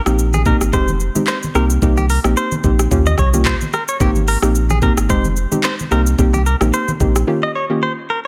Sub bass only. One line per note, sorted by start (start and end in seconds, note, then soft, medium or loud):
0.06 0.53 A#1 medium
0.61 0.71 G#1 medium
0.73 1.10 F1 loud
1.55 1.78 C2 loud
1.82 2.19 C2 loud
2.24 2.35 A#1 medium
2.64 2.87 A#1 medium
2.91 3.15 D#2 loud
3.19 3.55 C2 medium
4.00 4.37 G#1 loud
4.43 4.90 A#1 medium
4.97 5.08 G#1 medium
5.10 5.46 F1 loud
5.91 6.15 C2 loud
6.19 6.55 C2 loud
6.61 6.71 A#1 medium
7.00 7.24 A#1 medium